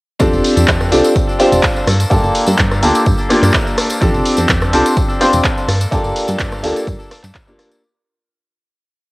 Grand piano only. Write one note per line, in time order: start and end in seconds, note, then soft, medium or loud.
0.20 0.89 C4 medium
0.20 0.89 D4 medium
0.20 0.89 F4 medium
0.20 0.89 G4 medium
0.20 0.90 A4 loud
0.91 1.37 C4 medium
0.91 1.37 D4 medium
0.91 1.37 F4 medium
0.91 1.37 G4 medium
0.91 1.37 A4 medium
1.39 1.86 C4 loud
1.39 1.86 D4 medium
1.39 1.86 F4 medium
1.39 1.86 G4 medium
1.39 1.86 C5 loud
2.10 2.79 A#3 loud
2.10 2.79 D4 medium
2.10 2.80 F4 medium
2.10 2.80 G4 medium
2.10 2.80 A4 loud
2.82 3.27 A#3 medium
2.82 3.27 D4 medium
2.82 3.27 F4 medium
2.82 3.28 G4 medium
2.82 3.28 A4 loud
3.29 3.98 A#3 loud
3.29 3.98 D4 medium
3.29 3.99 F4 medium
3.29 3.99 G4 medium
4.01 4.70 C4 loud
4.01 4.70 D4 medium
4.01 4.70 F4 medium
4.01 4.70 G4 medium
4.01 4.71 A4 loud
4.73 5.18 C4 medium
4.73 5.18 D4 medium
4.73 5.18 F4 medium
4.73 5.18 G4 medium
4.73 5.18 A4 loud
5.20 5.67 C4 loud
5.20 5.67 D4 medium
5.20 5.67 F4 medium
5.20 5.67 G4 medium
5.20 5.67 C5 loud
5.91 6.60 A#3 loud
5.91 6.61 D4 medium
5.91 6.61 F4 medium
5.91 6.61 G4 medium
5.91 6.61 A4 loud
6.63 7.08 A#3 medium
6.63 7.08 D4 medium
6.63 7.08 F4 medium
6.63 7.08 G4 medium
6.63 7.09 A4 loud
7.47 7.80 A#3 medium
7.47 7.80 D4 medium
7.47 7.80 F4 medium
7.47 7.80 G4 medium